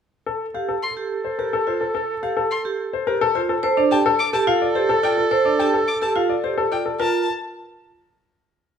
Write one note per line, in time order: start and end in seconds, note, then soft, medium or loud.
0.26 0.45 A4 medium
0.26 3.45 A4 medium
0.54 0.73 G4 soft
0.54 0.73 F5 soft
0.69 0.87 A4 medium
0.83 0.93 C6 soft
0.97 1.15 G4 soft
1.25 1.43 C5 soft
1.39 1.57 G4 soft
1.39 1.57 A#4 soft
1.53 1.71 A4 medium
1.67 1.85 F4 medium
1.67 1.85 C5 soft
1.81 1.93 A4 soft
1.95 2.13 A4 medium
2.23 2.41 G4 soft
2.23 2.41 F5 medium
2.37 2.55 A4 medium
2.51 2.62 C6 medium
2.65 2.83 G4 medium
2.93 3.12 C5 medium
3.07 3.25 G4 medium
3.07 3.25 A#4 medium
3.21 3.40 A4 medium
3.35 3.54 F4 medium
3.35 3.54 C5 medium
3.49 3.62 A4 medium
3.63 6.82 A4 medium
3.63 3.82 A4 medium
3.63 3.81 C5 medium
3.77 3.96 D4 medium
3.77 3.96 D5 medium
3.91 4.10 G4 medium
3.91 4.10 G5 medium
3.91 4.02 A5 medium
4.06 4.24 A4 medium
4.19 4.30 D6 medium
4.33 4.52 G4 medium
4.33 4.52 A4 medium
4.33 4.44 A5 medium
4.47 4.66 F4 medium
4.47 4.66 F5 medium
4.62 4.80 D5 medium
4.75 4.94 G4 medium
4.75 4.94 C5 medium
4.89 5.08 A4 medium
5.03 5.22 F4 medium
5.03 5.22 D5 medium
5.03 5.14 G5 medium
5.18 5.30 A4 soft
5.31 5.50 A4 medium
5.31 5.50 C5 medium
5.45 5.64 D4 medium
5.45 5.64 D5 medium
5.59 5.78 G4 soft
5.59 5.78 G5 medium
5.59 5.70 A5 medium
5.74 5.92 A4 medium
5.88 5.98 D6 soft
6.02 6.20 G4 medium
6.02 6.20 A4 soft
6.02 6.12 A5 medium
6.16 6.34 F4 medium
6.16 6.34 F5 medium
6.29 6.48 D5 medium
6.44 6.62 G4 soft
6.44 6.62 C5 medium
6.58 6.76 A4 medium
6.72 6.90 F4 medium
6.72 6.90 D5 medium
6.72 6.82 G5 medium
6.86 7.04 A4 soft
7.00 7.26 F4 medium
7.00 7.26 A#4 medium
7.00 7.26 A5 medium